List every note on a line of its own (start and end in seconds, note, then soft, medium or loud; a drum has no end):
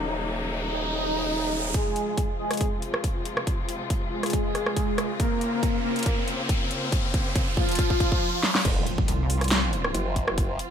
0.00 1.72 D#1 medium
0.00 1.70 C#3 medium
0.00 1.70 F#3 medium
0.00 1.71 A#3 medium
0.00 1.71 D#4 medium
0.00 riser medium
0.67 1.66 D#4 loud
1.74 5.16 C3 medium
1.74 5.16 F3 medium
1.74 5.16 G#3 medium
1.74 2.31 G#3 medium
1.74 8.18 F4 medium
1.74 2.31 G#4 loud
1.74 kick loud
1.74 closed hi-hat medium
1.74 riser medium
1.96 closed hi-hat medium
2.18 kick loud
2.18 closed hi-hat medium
2.39 2.66 G#3 medium
2.39 2.66 G#4 medium
2.51 cross-stick medium
2.51 closed hi-hat medium
2.54 closed hi-hat medium
2.57 kick medium
2.57 closed hi-hat medium
2.61 closed hi-hat medium
2.82 closed hi-hat medium
2.94 cross-stick medium
3.04 kick loud
3.04 closed hi-hat medium
3.25 closed hi-hat medium
3.37 cross-stick medium
3.47 kick loud
3.47 closed hi-hat medium
3.69 closed hi-hat medium
3.90 kick loud
3.90 closed hi-hat medium
4.12 5.12 G#3 medium
4.12 5.12 G#4 loud
4.23 cross-stick medium
4.23 closed hi-hat medium
4.26 closed hi-hat medium
4.30 closed hi-hat medium
4.33 kick loud
4.33 closed hi-hat medium
4.55 cross-stick soft
4.55 closed hi-hat medium
4.66 cross-stick medium
4.76 kick loud
4.76 closed hi-hat medium
4.98 cross-stick medium
4.98 closed hi-hat medium
5.20 8.19 C#3 medium
5.20 8.19 A#3 medium
5.20 5.76 A#3 medium
5.20 8.19 C4 medium
5.20 5.76 A#4 loud
5.20 kick loud
5.20 closed hi-hat medium
5.41 closed hi-hat medium
5.63 kick loud
5.63 closed hi-hat medium
5.84 6.11 A#3 medium
5.84 6.11 A#4 medium
5.96 closed hi-hat medium
5.99 closed hi-hat medium
6.03 closed hi-hat medium
6.06 kick loud
6.06 closed hi-hat medium
6.28 closed hi-hat medium
6.49 kick loud
6.49 closed hi-hat medium
6.71 closed hi-hat medium
6.92 kick loud
6.92 closed hi-hat medium
7.14 kick loud
7.14 closed hi-hat medium
7.36 kick loud
7.36 closed hi-hat medium
7.57 8.57 F3 medium
7.57 8.57 F4 loud
7.57 kick loud
7.69 closed hi-hat soft
7.71 closed hi-hat medium
7.75 kick loud
7.75 closed hi-hat medium
7.79 closed hi-hat medium
7.90 kick medium
8.00 kick loud
8.00 closed hi-hat medium
8.12 kick medium
8.43 snare medium
8.55 snare medium
8.65 8.85 F1 loud
8.65 10.70 F3 medium
8.65 10.70 C4 medium
8.65 10.70 F4 medium
8.65 kick loud
8.65 closed hi-hat medium
8.65 crash loud
8.65 impact medium
8.87 closed hi-hat medium
8.98 kick loud
9.08 9.93 C2 medium
9.08 closed hi-hat medium
9.30 open hi-hat loud
9.41 cross-stick medium
9.41 closed hi-hat medium
9.44 closed hi-hat medium
9.48 snare loud
9.48 closed hi-hat medium
9.51 closed hi-hat medium
9.73 closed hi-hat medium
9.84 cross-stick medium
9.95 10.58 F#1 loud
9.95 closed hi-hat medium
10.16 kick medium
10.16 closed hi-hat medium
10.28 cross-stick medium
10.38 kick loud
10.38 closed hi-hat medium
10.59 closed hi-hat medium